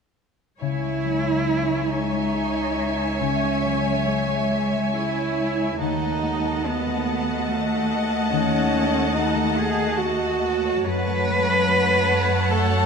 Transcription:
0.60 5.77 C#2 soft
0.60 3.19 C#3 soft
0.60 1.92 E4 medium
0.60 5.76 C#5 soft
0.60 5.78 E5 soft
0.60 5.77 G#5 soft
0.83 1.25 G#3 soft
1.04 1.41 F#3 soft
1.26 1.69 G#3 soft
1.48 1.90 G#4 soft
1.70 2.11 G#3 soft
1.91 3.21 D#4 medium
1.91 2.32 G#4 soft
2.12 3.42 G#3 soft
2.33 4.06 G#4 soft
2.56 2.98 C#5 soft
2.99 5.16 C#5 soft
3.20 5.84 C#3 soft
3.20 4.08 C#4 medium
3.43 3.85 G#3 soft
3.64 4.00 F#3 soft
3.86 4.27 G#3 soft
4.06 4.96 G#3 medium
4.06 4.50 G#4 soft
4.28 4.72 G#3 soft
4.51 4.95 G#4 soft
4.73 5.85 G#3 soft
4.95 5.79 E4 medium
4.95 5.85 G#4 soft
5.17 5.60 C#5 soft
5.39 5.75 E5 soft
5.61 5.85 C#5 soft
5.80 10.80 D#2 soft
5.80 8.31 D#3 soft
5.80 10.80 A3 soft
5.80 6.68 D#4 medium
5.80 10.80 D#5 soft
5.80 10.81 F#5 soft
5.80 10.81 A5 soft
6.02 6.43 A3 soft
6.22 6.59 G#3 soft
6.44 6.85 A3 soft
6.64 7.50 B3 medium
6.64 7.07 F#4 soft
6.86 7.28 A3 soft
7.08 7.49 F#4 soft
7.29 8.52 A3 soft
7.48 8.32 A3 medium
7.48 9.13 F#4 soft
7.92 8.27 B4 soft
8.32 10.88 D#3 soft
8.32 9.16 C#4 medium
8.53 8.93 A3 soft
8.73 9.08 G#3 soft
8.94 9.34 A3 soft
9.14 9.58 D#4 medium
9.14 9.54 F#4 soft
9.36 9.75 A3 soft
9.56 9.96 F#4 soft
9.56 9.99 G#4 medium
9.76 11.06 A3 soft
9.97 10.87 F#4 medium
9.97 11.67 F#4 soft
10.20 12.86 A5 soft
10.42 10.79 B4 soft
10.65 12.86 C#5 soft
10.84 12.86 F#2 soft
10.84 12.86 A3 medium
10.84 12.52 B4 medium
10.84 12.86 C#5 medium
10.84 12.86 F#5 medium
10.84 12.86 A5 medium
11.07 11.47 A3 soft
11.28 11.62 G#3 soft
11.48 11.88 A3 soft
11.68 12.08 F#4 soft
11.89 12.29 A3 soft
12.09 12.49 F#4 soft
12.30 12.86 A3 soft
12.50 12.86 F#4 soft
12.50 12.86 A4 medium

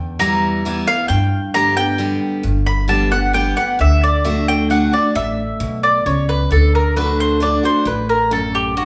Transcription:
0.00 0.60 E2 loud
0.00 0.81 E2 medium
0.19 0.62 E3 loud
0.19 0.63 G3 loud
0.19 0.63 B3 loud
0.19 0.63 E4 loud
0.19 0.83 A#5 loud
0.65 0.87 E3 medium
0.65 0.87 G3 loud
0.65 0.87 B3 medium
0.65 0.86 E4 medium
0.87 1.10 B3 medium
0.87 1.09 E4 medium
0.87 1.08 F5 loud
1.08 1.95 G2 loud
1.08 2.16 G2 medium
1.08 1.51 G5 loud
1.54 1.76 D3 medium
1.54 1.76 G3 loud
1.54 1.77 B3 loud
1.54 1.75 G4 loud
1.54 1.76 A#5 loud
1.76 1.98 B3 medium
1.76 1.98 G4 medium
1.76 2.19 G5 loud
1.98 2.42 D3 medium
1.98 2.42 G3 medium
1.98 2.42 B3 medium
1.98 2.43 G4 medium
2.43 3.51 G1 medium
2.43 3.30 G2 medium
2.66 2.89 B5 medium
2.88 3.11 D3 loud
2.88 3.11 G3 medium
2.88 3.11 B3 medium
2.88 3.10 G4 loud
2.88 3.11 A5 medium
3.11 3.33 B3 soft
3.11 3.33 G4 medium
3.11 3.34 F#5 loud
3.33 3.56 D3 medium
3.33 3.56 G3 medium
3.33 3.57 B3 loud
3.33 3.55 G4 medium
3.33 3.56 G5 medium
3.56 3.79 B3 soft
3.56 3.78 G4 medium
3.56 3.79 F#5 medium
3.79 4.87 D2 medium
3.79 4.23 D3 medium
3.79 4.02 E5 medium
4.03 4.25 D5 medium
4.24 4.68 D3 medium
4.24 4.68 A3 medium
4.24 4.68 D4 loud
4.24 4.69 F#4 loud
4.24 4.47 E5 medium
4.48 4.70 G5 loud
4.70 4.92 D3 medium
4.70 4.92 A3 medium
4.70 4.92 D4 medium
4.70 4.92 F#4 loud
4.70 4.93 F#5 medium
4.93 5.15 D4 medium
4.93 5.14 F#4 medium
4.93 5.15 D5 medium
5.15 5.51 A1 medium
5.15 6.01 A2 medium
5.15 5.79 E5 loud
5.60 5.99 B1 medium
5.60 6.03 B2 loud
5.83 6.05 D5 medium
6.06 6.44 C#2 medium
6.06 6.49 C#3 medium
6.06 6.28 C#5 medium
6.29 6.50 B4 medium
6.51 7.58 D2 medium
6.51 6.95 D3 medium
6.51 6.73 A4 medium
6.75 6.96 A#4 medium
6.96 7.39 D3 medium
6.96 7.39 A3 loud
6.96 7.40 D4 medium
6.96 7.40 F#4 medium
6.96 7.18 B4 medium
7.20 7.41 C5 medium
7.40 7.62 D3 medium
7.40 7.63 A3 medium
7.40 7.63 D4 medium
7.40 7.62 F#4 loud
7.40 7.64 D5 medium
7.63 7.86 D4 medium
7.63 7.85 F#4 medium
7.63 7.86 C5 medium
7.85 8.85 A1 medium
7.85 8.71 A2 medium
7.85 8.09 B4 medium
8.09 8.31 A#4 medium
8.31 8.74 F#2 loud
8.31 8.54 A4 medium
8.55 8.76 G4 medium
8.77 8.85 G2 medium
8.77 8.85 F#4 medium

